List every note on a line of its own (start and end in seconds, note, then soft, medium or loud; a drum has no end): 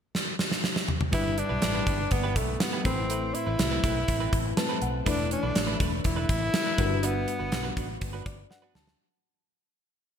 0.15 snare medium
0.39 snare medium
0.51 snare medium
0.64 snare medium
0.76 snare medium
0.88 mid tom medium
1.01 mid tom medium
1.12 1.41 G1 loud
1.12 1.83 G2 medium
1.12 2.81 G3 medium
1.12 1.32 B3 medium
1.12 2.81 D4 medium
1.12 2.82 E4 medium
1.12 1.25 E4 medium
1.12 1.40 E4 loud
1.12 1.24 G4 medium
1.12 2.82 B4 medium
1.12 1.24 B4 medium
1.12 kick loud
1.12 closed hi-hat medium
1.25 muted clean electric guitar stroke soft
1.37 2.13 D4 loud
1.37 muted clean electric guitar stroke soft
1.37 closed hi-hat medium
1.49 1.59 B1 medium
1.49 1.61 B3 soft
1.49 1.61 E4 medium
1.49 1.62 G4 medium
1.49 1.62 B4 medium
1.62 1.81 A1 medium
1.62 muted clean electric guitar stroke soft
1.62 snare loud
1.62 closed hi-hat medium
1.74 1.85 B3 medium
1.74 1.86 E4 medium
1.74 1.86 G4 medium
1.74 1.87 B4 medium
1.87 2.05 G1 medium
1.87 2.02 B3 medium
1.87 1.99 E4 medium
1.87 1.98 G4 medium
1.87 1.98 B4 medium
1.87 kick medium
1.87 closed hi-hat medium
1.99 muted clean electric guitar stroke soft
2.11 2.36 G1 medium
2.11 2.38 B3 medium
2.11 muted clean electric guitar stroke soft
2.11 kick medium
2.11 closed hi-hat medium
2.23 2.34 B3 medium
2.23 2.35 E4 medium
2.23 2.35 G4 medium
2.23 2.36 B4 medium
2.36 2.54 B1 medium
2.36 2.62 A3 medium
2.36 muted clean electric guitar stroke soft
2.36 kick medium
2.36 closed hi-hat medium
2.48 muted clean electric guitar stroke soft
2.60 2.85 B3 medium
2.60 muted clean electric guitar stroke soft
2.60 snare loud
2.60 closed hi-hat medium
2.73 2.85 B3 soft
2.73 2.85 E4 medium
2.73 2.86 G4 medium
2.73 2.85 B4 medium
2.84 3.31 A1 medium
2.84 3.55 A2 medium
2.84 4.53 A3 medium
2.84 3.05 A3 medium
2.84 4.54 C4 medium
2.84 3.36 C4 loud
2.84 2.98 C4 medium
2.84 4.54 E4 medium
2.84 2.97 E4 medium
2.84 4.54 B4 medium
2.84 2.96 B4 medium
2.84 kick loud
2.84 closed hi-hat medium
2.98 muted clean electric guitar stroke soft
3.10 3.29 A3 medium
3.10 3.22 C4 medium
3.10 3.22 E4 medium
3.10 3.21 B4 medium
3.10 closed hi-hat medium
3.22 muted clean electric guitar stroke soft
3.34 4.82 E4 loud
3.34 muted clean electric guitar stroke soft
3.34 closed hi-hat medium
3.46 3.56 A1 medium
3.46 3.58 A3 soft
3.46 3.58 C4 soft
3.46 3.59 E4 medium
3.46 3.59 B4 medium
3.59 3.78 C2 medium
3.59 muted clean electric guitar stroke soft
3.59 snare loud
3.59 closed hi-hat medium
3.71 3.82 A3 medium
3.71 3.83 C4 medium
3.71 3.83 E4 medium
3.71 3.84 B4 medium
3.84 4.02 B1 medium
3.84 3.99 A3 medium
3.84 3.96 C4 medium
3.84 3.96 E4 medium
3.84 3.95 B4 medium
3.84 kick medium
3.84 closed hi-hat medium
3.96 muted clean electric guitar stroke soft
4.08 4.27 A1 medium
4.08 muted clean electric guitar stroke soft
4.08 kick medium
4.08 closed hi-hat medium
4.20 4.32 A3 medium
4.20 4.32 C4 medium
4.20 4.32 E4 medium
4.20 4.33 B4 medium
4.33 4.51 A1 medium
4.33 muted clean electric guitar stroke soft
4.33 kick loud
4.33 closed hi-hat medium
4.45 muted clean electric guitar stroke soft
4.57 5.04 A3 medium
4.57 5.06 C4 soft
4.57 5.05 E4 soft
4.57 5.06 B4 medium
4.57 4.80 A5 medium
4.57 muted clean electric guitar stroke soft
4.57 snare loud
4.57 closed hi-hat medium
4.69 4.80 A3 medium
4.69 4.81 C4 medium
4.69 4.81 E4 medium
4.69 4.81 B4 medium
4.81 5.00 B1 medium
4.81 5.05 F#5 medium
4.81 muted clean electric guitar stroke soft
4.81 closed hi-hat medium
4.94 muted clean electric guitar stroke soft
5.05 5.34 E1 medium
5.05 5.76 E3 medium
5.05 6.75 A3 medium
5.05 5.26 A3 medium
5.05 6.75 D4 medium
5.05 5.18 D4 medium
5.05 5.30 D4 loud
5.05 6.75 E4 medium
5.05 5.18 E4 medium
5.05 5.17 B4 medium
5.05 6.76 B4 medium
5.05 kick loud
5.05 closed hi-hat loud
5.18 muted clean electric guitar stroke medium
5.30 5.78 D4 loud
5.30 muted clean electric guitar stroke soft
5.30 closed hi-hat medium
5.43 5.53 B1 medium
5.43 5.54 A3 soft
5.43 5.54 D4 medium
5.43 5.55 E4 medium
5.43 5.55 B4 medium
5.55 5.74 A1 medium
5.55 muted clean electric guitar stroke soft
5.55 snare loud
5.55 closed hi-hat medium
5.67 5.78 A3 medium
5.67 5.79 D4 medium
5.67 5.79 E4 medium
5.67 5.80 B4 medium
5.79 5.99 E1 medium
5.79 5.96 A3 medium
5.79 5.92 D4 medium
5.79 5.92 E4 medium
5.79 5.91 B4 medium
5.79 kick loud
5.79 closed hi-hat medium
5.92 muted clean electric guitar stroke soft
6.04 6.23 E1 medium
6.04 7.05 E4 loud
6.04 muted clean electric guitar stroke soft
6.04 kick medium
6.04 closed hi-hat medium
6.16 6.28 A3 medium
6.16 6.28 D4 medium
6.16 6.28 E4 medium
6.16 6.29 B4 medium
6.29 6.48 A1 medium
6.29 muted clean electric guitar stroke soft
6.29 kick medium
6.29 closed hi-hat medium
6.41 muted clean electric guitar stroke soft
6.53 muted clean electric guitar stroke soft
6.53 snare loud
6.53 closed hi-hat medium
6.65 6.77 A3 medium
6.65 6.77 D4 soft
6.65 6.79 E4 medium
6.65 6.78 B4 medium
6.77 7.25 G1 medium
6.77 7.48 G2 medium
6.77 8.71 G3 medium
6.77 6.98 B3 medium
6.77 8.71 D4 medium
6.77 6.90 D4 medium
6.77 6.90 F#4 medium
6.77 8.72 F#4 medium
6.77 6.85 A#4 medium
6.77 6.89 B4 medium
6.77 kick loud
6.77 closed hi-hat medium
6.86 8.75 B4 medium
6.91 muted clean electric guitar stroke soft
7.02 7.23 B3 medium
7.02 8.02 B3 loud
7.02 7.14 D4 medium
7.02 7.14 F#4 medium
7.02 7.13 B4 medium
7.02 closed hi-hat loud
7.15 muted clean electric guitar stroke soft
7.27 muted clean electric guitar stroke soft
7.27 closed hi-hat medium
7.39 7.49 G1 medium
7.39 7.50 B3 soft
7.39 7.51 D4 soft
7.39 7.51 F#4 medium
7.39 7.51 B4 medium
7.52 7.71 B1 medium
7.52 snare loud
7.52 closed hi-hat medium
7.63 7.75 B3 medium
7.63 7.75 D4 medium
7.63 7.76 F#4 medium
7.63 7.76 B4 medium
7.76 7.95 A1 medium
7.76 7.92 B3 medium
7.76 7.88 D4 medium
7.76 7.88 F#4 medium
7.76 7.87 B4 medium
7.76 kick medium
7.76 closed hi-hat medium
7.88 muted clean electric guitar stroke soft
8.01 8.20 G1 medium
8.01 muted clean electric guitar stroke soft
8.01 kick medium
8.01 closed hi-hat medium
8.13 8.24 B3 medium
8.13 8.25 D4 medium
8.13 8.25 F#4 medium
8.13 8.25 B4 medium
8.26 8.45 G1 medium
8.26 8.49 D5 medium
8.26 kick loud
8.26 closed hi-hat medium
8.38 muted clean electric guitar stroke soft
8.50 8.74 F#5 medium
8.50 muted clean electric guitar stroke soft
8.50 snare medium
8.62 8.74 B3 medium
8.62 8.74 D4 medium
8.62 8.74 F#4 medium
8.62 8.75 B4 medium
8.75 8.94 D2 medium
8.75 8.98 A5 medium
8.75 muted clean electric guitar stroke soft
8.75 snare medium
8.87 muted clean electric guitar stroke soft
8.87 snare medium